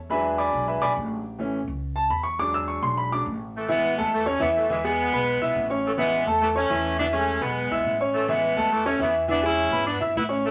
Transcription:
Already playing: E2
0.10 F#3 G#3 D4 B4 E5 G#5 B5
0.38 D5 G#5 B5 D6
0.53 B1
0.68 B4 E5 G#5 B5
0.82 B1 D5 G#5 B5 D6
0.97 A1
1.39 E3 A3 C#4
1.68 C#2
1.96 A5
2.10 E2 B5
2.23 C#6
2.39 F#3 G#3 D4 D6
2.54 E6
2.68 C#6
2.82 B1 C6
2.97 B5
3.12 F#3 G#3 D4 D6
3.26 A1
3.55 E3 A3
3.68 E3 G#3 B3 E4 E5
3.98 E2 A3 A4 A5
4.14 E3 A3
4.26 A3 C#4 C#5 C#6
4.40 E2 E3 B3 E4 E5
4.56 F#3 A3
4.70 E3 G#3 E4 E5
4.84 G#3 B3 G#4 G#5
5.12 B1 B3 B4 B5
5.41 B1 E4 E5 E6
5.55 A1
5.70 C#4 C#5 C#6
5.85 E3 A3
5.98 E3 G#3 B3 E4 E5
6.26 E2 A3 A4 A5
6.41 E3 A3
6.55 A3 C#4 C#5 C#6
6.70 E2 E3 E4 E5
6.99 E3 B3 D4 E4 E5
7.13 G#3 A3 C#4 G#4 G#5
7.41 B1 G#3 B3 B4 B5
7.71 B1 E4 E5 E6
7.84 A1
8.00 C#4 C#5 C#6
8.13 E3 A3
8.28 E3 G#3 B3 E4 E5
8.56 E2 A3 A4 A5
8.71 E3 A3
8.85 A3 C#4 C#5 C#6
8.99 E2 E3 B3 E4 E5
9.28 E3 B3 D4 E4 E5
9.43 G#3 C#4 E4 G#4 G#5
9.71 G#2 B3 B4 B5
9.86 B3 D4
10.00 G#2 E4 E5 E6
10.15 A2 B3 E4
10.29 C#4 C#5 C#6
10.44 E3 A3

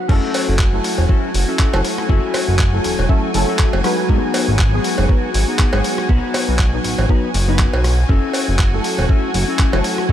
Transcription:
Already playing: F#5
0.08 F#1 F#3 A3 C#4 E4 F#4 A4 G#5, kick, crash
0.34 open hi-hat, cowbell
0.48 F#1
0.59 kick, clap
0.72 F#3 A3 C#4 E4 A4
0.84 open hi-hat
0.97 E1, muted clean electric guitar stroke, cowbell
1.08 C#4 E4 F#4 A4, kick
1.34 F#1, open hi-hat
1.48 C#4 E4 F#4 A4
1.59 kick, clap
1.72 F#1 F#3 A3 C#4 E4 A4, cross-stick, cowbell
1.85 open hi-hat
1.98 muted clean electric guitar stroke, cross-stick
2.08 F#1 C#4 E4 F#4 A4, kick
2.34 cross-stick, open hi-hat, cowbell
2.48 F#1
2.59 kick, clap
2.73 F#3 A3 C#4 E4 A4
2.84 E1, open hi-hat
2.98 E1, muted clean electric guitar stroke, cowbell
3.09 F#3 A3 C#4 E4 F#4 A4, kick
3.34 F#1 F#3 A3 C#4 E4 A4, open hi-hat
3.48 C#4 E4 F#4 A4
3.59 kick, clap
3.73 F#1, cowbell
3.83 F#3 G#3 B3 D#4 B4, cross-stick, open hi-hat
3.98 muted clean electric guitar stroke
4.09 G#1 B3 D#4 F#4 G#4, kick
4.34 open hi-hat, cowbell
4.48 G#1
4.59 kick, clap
4.72 F#3 G#3 B3 D#4 G#4
4.84 open hi-hat
4.98 F#1, muted clean electric guitar stroke, cowbell
5.09 B3 D#4 F#4 B4, kick
5.34 G#1, open hi-hat
5.47 B3 D#4 F#4 G#4
5.59 kick, clap
5.73 G#1 F#3 G#3 B3 D#4 G#4, cross-stick, cowbell
5.84 open hi-hat
5.98 muted clean electric guitar stroke, cross-stick
6.08 B1 B3 D#4 F#4 B4, kick
6.34 cross-stick, open hi-hat, cowbell
6.49 B1
6.59 kick, clap
6.73 F#3 B3 D#4
6.84 A1, open hi-hat
6.98 A1, muted clean electric guitar stroke, cowbell
7.09 F#3 B3 D#4 F#4 B4, kick
7.34 F#1, open hi-hat
7.48 F#3 B3 D#4 F#4 B4
7.59 kick, clap
7.73 B1, cowbell
7.84 cross-stick, open hi-hat
7.98 muted clean electric guitar stroke
8.09 F#1 C#4 E4 F#4 A4 G#5, kick
8.33 open hi-hat, cowbell
8.48 F#1
8.59 kick, clap
8.72 F#3 A3 C#4 E4 A4
8.84 open hi-hat
8.98 E1, muted clean electric guitar stroke, cowbell
9.09 C#4 E4 F#4 A4, kick
9.34 F#1, open hi-hat
9.48 C#4 E4 F#4 A4
9.59 kick, clap
9.72 F#1 F#3 A3 C#4 E4 A4, cross-stick, cowbell
9.84 open hi-hat
9.98 muted clean electric guitar stroke, cross-stick
10.09 F#1 C#4 E4, kick

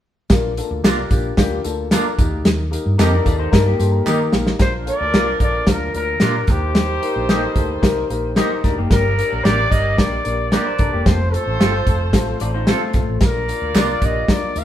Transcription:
0.30 A#1 A#3 D4 F4 A#4, kick, snare, closed hi-hat, tambourine
0.57 A#3 D4 F4 A4, closed hi-hat, tambourine
0.71 D2
0.84 C2 A#3 D4 F4 G4 A#4, snare, clap, closed hi-hat, tambourine
1.10 A#1 A#3 D4 F4 G4, kick, closed hi-hat, tambourine
1.37 D2 A#3 D4 F4 G4, kick, snare, closed hi-hat, tambourine
1.64 D2 A#3 D4 F4 A4, closed hi-hat, tambourine
1.91 A#3 D4 F4 A4 A#4, snare, clap, closed hi-hat, tambourine
2.18 D#2 A#3 D#4 G4 A#4, kick, closed hi-hat, tambourine
2.32 D2
2.45 D#2, snare, closed hi-hat, tambourine
2.71 A#3 D#4 G4 A#4, closed hi-hat, tambourine
2.86 G2
2.98 F2 A#3 C4 D#4 G4 A4 A#4, snare, clap, closed hi-hat, tambourine
3.13 D4 A#4
3.24 D#2 A#3 D#4 F4 G4 A4 D5, kick, closed hi-hat, tambourine
3.39 D#4 C5
3.51 G2 A#3 D4 D#4 G4 A#4, kick, snare, closed hi-hat, tambourine
3.66 A#3 G4
3.79 G2 A#3 D#4 G4 A4 C6, closed hi-hat, tambourine
3.92 A#5
4.06 D#3 A#3 D#4 G4 A#4 G5, snare, clap, tambourine
4.31 A#1 A#3 D#4 G4 A#4 F5, snare, tambourine
4.47 snare
4.58 A#1 F3 A#3 D4 F4 A#4 C5, kick, snare, closed hi-hat
4.86 A#3 D4 F4 A4 D5, closed hi-hat
5.01 D2
5.12 C2 A#3 D4 F4 A#4, snare, closed hi-hat
5.40 A#1 A#3 D4 F4 A4 D5, kick, closed hi-hat
5.67 D2 A#3 D4 F4 A#4, kick, snare, closed hi-hat
5.93 D2 A#3 D4 F4 A#4, closed hi-hat
6.20 A#2 A#3 D4 F4 G4 A#4, snare, closed hi-hat
6.47 D#2 G3 A#3 D#4 G4 A#4 C5, kick, snare, closed hi-hat
6.75 snare, closed hi-hat
7.01 A#3 D#4 G4 A#4, closed hi-hat
7.16 A#1
7.28 A#3 D#4 G4 A4 A#4, snare, closed hi-hat
7.55 D2 A#3 D#4 G4 A4, kick, closed hi-hat
7.82 C2 A#3 D#4 G4 A#4, kick, snare, closed hi-hat
8.09 A#1 A#3 D#4 G4 A#4, closed hi-hat
8.36 A#3 D#4 G4 A#4 C5, snare, closed hi-hat
8.64 D2 A#3 D4 D#4 G4 A#4, kick, snare, closed hi-hat
8.78 F#1 A#3 G4
8.90 G1 A#3 D4 G4 A#4 D5, kick, snare, closed hi-hat
9.17 A#3 D4 G4 A#4, closed hi-hat
9.32 A#1
9.44 A1 A#3 D4 G4 A#4 D5, snare, closed hi-hat
9.70 G1 A#3 D4 G4 A#4 D#5, kick, closed hi-hat
9.97 A#1 A#3 D4 G4 A#4 D5, kick, snare, closed hi-hat
10.24 A#1 A#3 D4 G4 A#4, closed hi-hat
10.51 A#3 D4 F4 G4 A#4 D5, snare, closed hi-hat
10.66 C5
10.78 C2 A#3 D4 G4 A4 A#4, kick, closed hi-hat
10.93 E1 A#3 G4
11.05 F1 A3 C4 F4 A4 C5, kick, snare, closed hi-hat
11.32 A3 C4 F4 A4, closed hi-hat
11.46 A1
11.60 G1 A3 C4 F4 A4, snare, closed hi-hat
11.87 F1 A3 C4 F4 A4, kick, closed hi-hat
12.13 A1 A3 C4 F4 A4, kick, snare, closed hi-hat
12.40 A1 A3 C4 F4 A4 D5, closed hi-hat
12.54 D#4 C5
12.67 A3 C4 F4 A4, snare, closed hi-hat
12.81 A3 F4
12.93 A#1 A3 C4 F4 A4, kick, snare, closed hi-hat
13.08 A1
13.21 A#1 A#3 D4 F4 A#4 D5, kick, snare, closed hi-hat, tambourine
13.25 A#4
13.48 A#3 D4 F4 A#4, closed hi-hat, tambourine
13.62 D2
13.75 C2 A#3 D4 F4 A#4 D5, snare, clap, closed hi-hat, tambourine
14.02 A#1 A#3 D4 F4 G4 D#5, kick, closed hi-hat
14.28 A#3 D4 F4 A#4 D5, kick, snare, closed hi-hat, tambourine
14.43 muted fingered electric bass stroke
14.56 D2 A#3 D4 F4 A#4 F5, closed hi-hat, tambourine

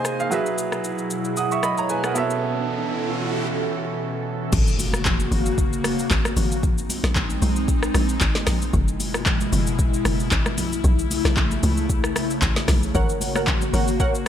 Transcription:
Already playing: C3 A#3 D#4 F4 G#4 C5 D#5 G#5 C6
0.05 cross-stick, shaker
0.20 G#4 F5, shaker
0.30 B2 F#3 E4 F#4 G#4 B4 E5, riser, shaker
0.46 shaker
0.58 shaker
0.72 cross-stick, shaker
0.84 shaker
0.98 shaker
1.10 shaker
1.25 shaker
1.37 F#5 D#6, shaker
1.51 E5 C#6, shaker
1.63 D#5 B5, cross-stick, shaker
1.78 C#5 A#5, shaker
1.89 B4 G#5, shaker
2.04 A#4 F#5, cross-stick, shaker
2.14 E3 B3 C#4 F#4 A4 C#5 E5, shaker
2.30 shaker
4.53 G#1 C#3 A#3 F#4, kick, crash, impact, low conga, shaker
4.67 shaker
4.79 open hi-hat, high conga, shaker
4.93 cross-stick, high conga, shaker
5.05 kick, clap, low conga, shaker
5.20 high conga, shaker
5.32 G#1, open hi-hat, high conga, low conga, shaker
5.46 shaker
5.58 kick, shaker
5.73 shaker
5.84 F#1, cross-stick, open hi-hat, high conga, shaker
5.99 shaker
6.11 G#1, kick, clap, shaker
6.25 cross-stick, high conga, shaker
6.37 G#1, open hi-hat, high conga, low conga, shaker
6.52 shaker
6.63 A#1 G#3 C4 D#4, kick, low conga, shaker
6.78 shaker
6.89 open hi-hat, high conga, shaker
7.04 A#1, cross-stick, snare, high conga, shaker
7.16 kick, clap, low conga, shaker
7.30 high conga, shaker
7.42 B1, open hi-hat, high conga, low conga, shaker
7.56 shaker
7.68 kick, shaker
7.83 cross-stick, shaker
7.94 A#1, cross-stick, open hi-hat, high conga, shaker
8.09 shaker
8.21 G#1, kick, clap, shaker
8.35 snare, high conga, shaker
8.47 A#1, cross-stick, snare, open hi-hat, high conga, low conga, shaker
8.62 shaker
8.73 F#1 B2 G#3 E4, kick, low conga, shaker
8.88 shaker
9.00 open hi-hat, high conga, shaker
9.14 cross-stick, high conga, shaker
9.26 kick, clap, low conga, shaker
9.41 high conga, shaker
9.53 F#1, open hi-hat, high conga, low conga, shaker
9.67 shaker
9.79 kick, shaker
9.94 shaker
10.05 F#1, cross-stick, open hi-hat, high conga, shaker
10.20 shaker
10.31 G#1, kick, clap, shaker
10.46 cross-stick, high conga, shaker
10.58 B1 C#3 A3, open hi-hat, high conga, low conga, shaker
10.73 shaker
10.84 B1, kick, low conga, shaker
10.99 shaker
11.11 open hi-hat, high conga, shaker
11.25 B1, cross-stick, snare, high conga, shaker
11.37 kick, clap, low conga, shaker
11.51 high conga, shaker
11.63 C#2, open hi-hat, high conga, low conga, shaker
11.77 shaker
11.89 kick, shaker
12.04 cross-stick, shaker
12.16 B1, cross-stick, open hi-hat, high conga, shaker
12.30 shaker
12.42 A1, kick, clap, shaker
12.56 snare, high conga, shaker
12.68 B1, kick, cross-stick, snare, open hi-hat, high conga, low conga, shaker
12.83 shaker
12.95 G#1 A#3 F#4 A#4 C#5 F#5, kick, low conga, shaker
13.09 shaker
13.21 open hi-hat, high conga, shaker
13.35 A#4 C#5 F#5, cross-stick, high conga, shaker
13.47 kick, clap, low conga, shaker
13.62 high conga, shaker
13.73 G#1 A#4 C#5 F#5, open hi-hat, high conga, low conga, shaker
13.88 shaker
14.00 A#4 C#5 F#5, kick, shaker
14.15 shaker

